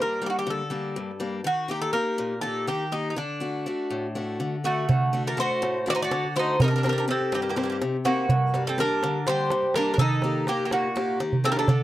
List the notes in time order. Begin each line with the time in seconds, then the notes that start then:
Already playing: G2 G3 A#3 D4
0.02 A#4
0.21 G3 A#3 D4
0.26 F#4 G4
0.39 G4
0.47 D3 A4
0.70 G3 A#3 D4
0.96 G2
1.20 G3 A#3 D4
1.44 D#3 F#4
1.68 A#3 D#4 G4
1.82 A4
1.93 A#3 D#4 G4 A#4
2.18 A#2
2.41 A#3 D#4 G4 A4
2.67 D#3 G4
2.92 A#3 D#4 G4
3.10 D#4
3.16 D3 D4
3.40 A3 D4 F#4
3.66 A3 D4 F#4
3.90 A2
4.15 A3 D4 F#4
4.40 D3
4.64 A3 D4 F#4
4.89 D3, darbuka dum
5.01 darbuka tek
5.13 A3 D4 F#4
5.27 D4 A#4
5.37 A3 D4 F#4 C5, darbuka tek
5.51 darbuka tek
5.62 A2, darbuka tek
5.86 A3 D4 F#4, darbuka tek
5.90 F#4 D5
5.95 D#4 C5
6.02 F#4 D5
6.11 D3, darbuka tek
6.24 darbuka tek
6.36 A3 D4 D#4 F#4 C5
6.60 C3 A#4, darbuka dum
6.64 D#4 A#4
6.71 D4, darbuka tek
6.76 D4 A#4
6.83 C4 D4 D#4 G4 A#4, darbuka tek
6.89 D4 A#4
6.98 D4 A#4
7.08 C4 D#4 G4 A4, darbuka tek
7.21 darbuka tek
7.32 G2 C4 G4, darbuka tek
7.42 A#3 G4
7.49 A#3 G4
7.56 A#3 C4 D#4 G4, darbuka tek
7.63 A#3 G4
7.70 A#3 G4
7.82 C3, darbuka tek
7.94 darbuka tek
8.05 A#3 C4 D#4 F#4 G4, darbuka tek
8.29 G2, darbuka dum
8.41 darbuka tek
8.54 G3 A#3 D4, darbuka tek
8.67 C4 A4
8.78 G3 A#3 D4 A#4, darbuka tek
8.91 darbuka tek
9.03 D3, darbuka tek
9.27 G3 A#3 D4 G4 C5, darbuka tek
9.50 G2, darbuka tek
9.63 darbuka tek
9.74 G3 A#3 D4 A#4, darbuka tek
9.94 D4 A#4
9.98 D#3 D#4 A4, darbuka dum
10.11 darbuka tek
10.22 A#3 D#4 G4, darbuka tek
10.47 A#3 D#4 G4, darbuka tek
10.60 darbuka tek
10.65 A#3 G4
10.71 A#2 A#3 F#4, darbuka tek
10.84 darbuka tek
10.96 A#3 D#4 G4, darbuka tek
11.20 D#3, darbuka tek
11.33 darbuka dum
11.44 A#3 C4 D#4 G4 A4, darbuka tek
11.52 D4 A#4
11.57 D4 A4, darbuka tek
11.68 D3, darbuka dum